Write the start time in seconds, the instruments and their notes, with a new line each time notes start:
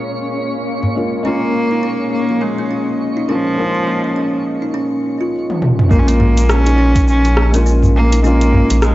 Already playing: synth drone A#2 A#3 C#4 G#4 F5, felt piano G#3 A#3 C#4 F4, synth texture C#4 C#5
0.83 udu
0.95 felt piano G#3 A#3 C#4 F4
1.23 felt piano G#3 A#3 C#4 F4, cello A#3, kalimba C#4
1.71 kalimba D#4
1.83 kalimba C#4
1.90 synth drone D#5
2.12 cello A#3
2.29 kalimba F3
2.41 cello G#3, kalimba A#3
2.58 kalimba A#3
2.71 kalimba C#4
3.17 kalimba D#4
3.28 cello F3, felt piano G#3 A#3 C#4 F4, kalimba C#4
3.56 felt piano G#3 A#3 C#4 F4
3.75 kalimba F3
3.87 kalimba A#3
4.04 kalimba A#3
4.16 kalimba C#4
4.62 kalimba D#4
4.74 kalimba C#4
5.21 kalimba F4
5.50 high tom
5.62 mid tom
5.79 mid tom
5.89 analog synth bass A#1, felt piano G#3 A#3 C#4, cello A#3, kalimba A#3, kick, shaker
5.93 felt piano F4
5.99 cello C#4
6.08 cello A#3, kalimba A#3, closed hi-hat, shaker
6.20 kalimba C#4, udu
6.38 closed hi-hat, shaker
6.50 cello C#4, cross-stick, shaker
6.54 synth drone F5
6.66 kalimba D#4, closed hi-hat, shaker
6.78 kalimba C#4
6.95 kick, closed hi-hat, shaker
7.08 cello C#4, shaker
7.24 kalimba F3, closed hi-hat, shaker
7.37 kalimba A#3, cross-stick
7.52 felt piano G#3 A#3 C#4, kalimba A#3, closed hi-hat, shaker
7.56 felt piano F4
7.66 kalimba C#4, shaker
7.83 udu, shaker
7.96 cello A#3
8.12 kalimba D#4, closed hi-hat, shaker
8.22 felt piano G#3 A#3 C#4, cello A#3, kalimba C#4, shaker
8.26 felt piano F4
8.41 closed hi-hat, shaker
8.53 udu
8.70 analog synth bass A#1, kalimba F3, closed hi-hat, shaker
8.82 cello G#3, kalimba A#3, cross-stick, shaker